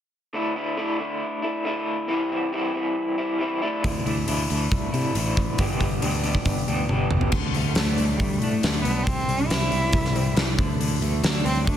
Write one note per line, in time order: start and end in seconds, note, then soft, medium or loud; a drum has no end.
0.33 0.76 D3 medium
0.33 0.56 A3 medium
0.33 0.55 D4 medium
0.33 0.55 E4 medium
0.56 0.76 A3 soft
0.56 0.77 D4 soft
0.56 0.78 E4 medium
0.77 1.21 D3 medium
0.77 0.99 A3 medium
0.77 0.99 D4 medium
0.77 0.99 E4 medium
0.99 1.43 A3 soft
0.99 1.42 D4 medium
0.99 1.42 E4 soft
1.42 1.64 A3 soft
1.42 1.64 D4 medium
1.42 1.66 E4 medium
1.64 2.07 D3 medium
1.64 2.08 A3 medium
1.64 2.08 D4 medium
1.64 2.09 E4 medium
2.08 2.51 C3 medium
2.08 2.52 E3 medium
2.08 2.31 G3 medium
2.08 2.30 C4 medium
2.08 2.30 E4 medium
2.31 2.52 G3 soft
2.31 2.52 C4 medium
2.31 2.53 E4 medium
2.52 2.96 C3 medium
2.52 3.38 E3 medium
2.52 2.75 G3 medium
2.52 2.74 C4 medium
2.52 2.74 E4 medium
2.74 3.18 G3 soft
2.74 3.17 C4 soft
2.74 3.17 E4 medium
3.18 3.38 G3 medium
3.18 3.39 C4 medium
3.18 3.40 E4 medium
3.39 3.60 E3 medium
3.39 3.61 G3 medium
3.39 3.61 C4 medium
3.39 3.61 E4 medium
3.62 3.83 D3 medium
3.62 3.83 A3 medium
3.62 3.85 D4 medium
3.62 3.85 E4 medium
3.84 4.01 D2 medium
3.84 4.26 D3 medium
3.84 4.06 A3 medium
3.84 4.06 D4 medium
3.84 4.04 E4 medium
3.84 kick medium
3.84 open hi-hat medium
4.05 4.23 D2 medium
4.05 4.26 A3 soft
4.05 4.28 D4 medium
4.05 4.28 E4 medium
4.05 open hi-hat soft
4.27 4.45 D2 medium
4.27 4.71 D3 medium
4.27 4.50 A3 medium
4.27 4.51 D4 medium
4.27 4.49 E4 medium
4.27 open hi-hat medium
4.50 4.67 D2 medium
4.50 4.93 A3 soft
4.50 4.93 D4 soft
4.50 4.91 E4 medium
4.50 open hi-hat soft
4.72 4.89 C2 medium
4.72 kick loud
4.72 open hi-hat medium
4.92 5.10 C3 medium
4.92 5.15 A3 medium
4.92 5.16 D4 medium
4.92 5.16 E4 medium
4.92 open hi-hat soft
5.15 5.49 A1 medium
5.15 5.58 D3 medium
5.15 5.58 A3 medium
5.15 5.60 D4 medium
5.15 5.59 E4 medium
5.15 open hi-hat medium
5.37 kick medium
5.37 open hi-hat soft
5.58 5.76 G1 medium
5.58 6.00 G2 medium
5.58 6.01 D3 medium
5.58 5.81 G3 medium
5.58 5.81 B3 medium
5.58 5.80 D4 medium
5.58 5.80 G4 medium
5.58 kick medium
5.58 open hi-hat medium
5.81 5.98 G1 medium
5.81 6.01 G3 soft
5.81 6.01 B3 soft
5.81 6.02 D4 medium
5.81 6.03 G4 medium
5.81 kick medium
5.81 open hi-hat soft
6.02 6.36 D2 medium
6.02 6.46 G2 medium
6.02 6.46 D3 medium
6.02 6.25 G3 medium
6.02 6.24 B3 medium
6.02 6.23 D4 medium
6.02 6.22 G4 medium
6.02 open hi-hat medium
6.24 6.68 G3 medium
6.24 6.68 B3 soft
6.24 6.67 D4 medium
6.24 6.67 G4 medium
6.24 open hi-hat soft
6.35 kick medium
6.45 6.63 G1 medium
6.45 kick medium
6.45 open hi-hat medium
6.68 6.85 D2 medium
6.68 6.89 G3 soft
6.68 6.90 B3 medium
6.68 6.90 D4 medium
6.68 6.92 G4 medium
6.68 open hi-hat soft
6.89 7.06 G1 medium
6.89 7.32 G3 medium
6.89 7.32 B3 medium
6.89 7.33 D4 medium
6.89 7.33 G4 medium
6.89 high tom soft
7.11 7.28 G1 medium
7.11 mid tom medium
7.21 floor tom medium
7.32 7.53 D2 medium
7.32 7.99 D3 medium
7.32 kick loud
7.32 crash medium
7.54 7.75 D2 medium
7.54 8.20 A3 medium
7.54 open hi-hat soft
7.75 7.97 D2 medium
7.75 8.19 A3 medium
7.75 8.42 D4 medium
7.75 snare medium
7.75 open hi-hat medium
7.98 8.19 D2 medium
7.98 8.63 D3 medium
7.98 open hi-hat soft
8.17 8.41 D2 medium
8.17 8.40 G3 medium
8.17 9.07 A3 medium
8.17 kick loud
8.17 open hi-hat medium
8.39 8.62 A2 medium
8.39 8.83 A3 medium
8.39 open hi-hat soft
8.43 8.85 D4 medium
8.63 8.84 D2 medium
8.63 9.07 D3 medium
8.63 snare medium
8.63 open hi-hat medium
8.81 9.05 B1 medium
8.81 9.05 B3 medium
8.81 open hi-hat soft
8.86 9.07 D4 medium
9.03 9.27 C2 medium
9.03 10.15 C3 medium
9.03 9.48 C4 medium
9.03 kick loud
9.07 open hi-hat medium
9.28 9.49 C2 medium
9.28 9.94 G3 medium
9.28 open hi-hat soft
9.46 10.35 E4 medium
9.50 9.71 C2 medium
9.50 10.14 C4 medium
9.50 snare medium
9.50 open hi-hat medium
9.72 9.92 C2 medium
9.72 10.36 E3 medium
9.72 open hi-hat soft
9.93 10.14 C2 medium
9.93 10.59 G3 medium
9.93 kick loud
9.93 open hi-hat medium
10.05 snare soft
10.15 10.36 C2 medium
10.15 10.59 C4 medium
10.15 open hi-hat soft
10.36 10.57 C2 medium
10.36 10.58 E3 medium
10.36 snare medium
10.36 open hi-hat medium
10.58 10.79 D2 medium
10.58 10.79 D3 medium
10.58 kick medium
10.58 open hi-hat soft
10.80 11.00 D2 medium
10.80 11.44 D3 medium
10.80 open hi-hat medium
11.01 11.22 D2 medium
11.01 11.66 A3 medium
11.01 open hi-hat soft
11.23 11.44 D2 medium
11.23 11.77 D4 medium
11.23 snare medium
11.23 open hi-hat medium
11.45 11.66 D2 medium
11.45 11.77 D3 medium
11.45 11.65 C4 medium
11.45 open hi-hat soft
11.67 11.77 D2 medium
11.67 11.77 A3 medium
11.67 11.77 D4 loud
11.67 kick loud
11.67 open hi-hat medium